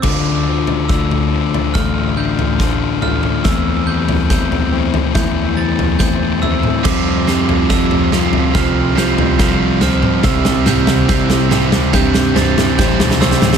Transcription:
<<
  \new Staff \with { instrumentName = "Glockenspiel" } { \time 4/4 \key d \minor \tempo 4 = 71 d'''4 e'''4 f'''8 g'''4 f'''8 | e'''8 g'''8 g'''4 g'''8 a'''8 g'''8 e'''8 | d'''4 e'''4 f'''8 g'''4 f'''8 | e'''8 g'''8 g'''4 g'''8 a'''8 g'''8 e'''8 | }
  \new Staff \with { instrumentName = "Distorted electric guitar" } { \time 4/4 \key d \minor <d a d' f'>8 <d a d' f'>8 <d a d' f'>8 <d a d' f'>8 <d a d' f'>8 <d a d' f'>8 <d a d' f'>8 <d a d' f'>8 | <e a c' e'>8 <e a c' e'>8 <e a c' e'>8 <e a c' e'>8 <e a c' e'>8 <e a c' e'>8 <e a c' e'>8 <e a c' e'>8 | <f g c' f'>8 <f g c' f'>8 <f g c' f'>8 <f g c' f'>8 <f g c' f'>8 <f g c' f'>8 <f g c' f'>8 <f g c' f'>8 | <c e g c' e'>8 <c e g c' e'>8 <c e g c' e'>8 <c e g c' e'>8 <c e g c' e'>8 <c e g c' e'>8 <c e g c' e'>8 <c e g c' e'>8 | }
  \new Staff \with { instrumentName = "Clean electric guitar" } { \clef bass \time 4/4 \key d \minor d8 f8 d8 f8 a8 d8 f8 a8 | e8 g8 g8 c'8 e'8 g8 c'8 e'8 | r8 g8 f8 g8 c'8 f8 g8 c'8 | c8 e8 e8 g8 c'8 e8 g8 c'8 | }
  \new Staff \with { instrumentName = "Overdriven electric guitar" } { \clef bass \time 4/4 \key d \minor r1 | r1 | <f, c f>8 <f, c f>8 <f, c f>8 <f, c f>8 <f, c f>8 <f, c f>8 <f, c f>8 <f, c f>8 | <c g c'>8 <c g c'>8 <c g c'>8 <c g c'>8 <c g c'>8 <c g c'>8 <c g c'>8 <c g c'>8 | }
  \new Staff \with { instrumentName = "Picked electric bass" } { \clef bass \time 4/4 \key d \minor d,2 a,,2 | e,2 e,2 | f,2 c,2 | c,2 g,4 a,,16 b,,16 c,16 d,16 | }
  \new DrumStaff \with { instrumentName = "Drums" } \drummode { \time 4/4 <cymc bd sn tomfh>8. tomfh16 <bd sn>16 tomfh8 tomfh16 <bd sn tomfh>8. tomfh16 <bd sn>8 tomfh16 toml16 | <bd sn tomfh>8. tomfh16 <bd sn>16 tomfh8 tomfh16 <bd sn tomfh>8. tomfh16 <bd sn>8 tomfh16 toml16 | <cymc bd sn tomfh>8 sn16 tomfh16 <bd sn>16 tomfh16 sn16 tomfh16 <bd sn tomfh>8 sn16 tomfh16 <bd sn>8 <sn tomfh>16 toml16 | <bd sn tomfh>16 <sn tomfh>16 <sn toml>16 <sn tomfh>16 <bd sn>16 sn16 <sn toml>16 <sn tomfh>16 <bd sn tomfh>16 sn16 <sn tomfh>16 <sn tomfh>16 <bd sn>16 <sn tomfh>32 sn32 <sn tomfh>32 sn32 <sn toml>32 sn32 | }
>>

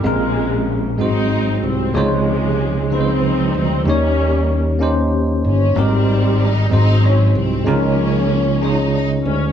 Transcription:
<<
  \new Staff \with { instrumentName = "Tine electric piano" } { \time 6/8 \key aes \major \tempo 4. = 63 <aes bes c' f' bes'>4 r8 <aes c' ees' ges' c''>4 r8 | <aes ees' f' c'' des''>4 r8 <des aes ees' f' ces'' c''>4 r8 | <bes des' ees' g' des''>4 r8 <bes des' ees' g' c''>4 r8 | <g c' ees' g' bes'>4 r8 <aes c' ees' ges' c''>4 r8 |
<aes des' ees' f' bes'>4 r8 <aes des' ees' f' des''>4 r8 | }
  \new Staff \with { instrumentName = "Tine electric piano" } { \clef bass \time 6/8 \key aes \major bes,4. aes,4. | c4. r4. | ees4. r4. | aes,4. aes,4. |
des4. r4. | }
  \new Staff \with { instrumentName = "String section" } { \time 6/8 \key aes \major << { aes4 r8 ees'4 c'8 | aes4. c'4 c'8 | des'4 r4. des'8 | c'4 ees'8 ees'8 des'8 c'8 |
des'4. ees'8 ees'8 des'8 | } \\ { <c des>4. <ges c'>4. | <c f>4. <f ees'>4. | <g bes>4. r4. | <ees g>4. <ges c'>4. |
<f bes>4. r4. | } >> }
  \new Staff \with { instrumentName = "Fingered electric bass" } { \clef bass \time 6/8 \key aes \major bes,,4. aes,,4 c,8 | des,2~ des,8 d,8 | ees,2~ ees,8 g,,8 | aes,,4. aes,,4 c,8 |
des,2~ des,8 d,8 | }
>>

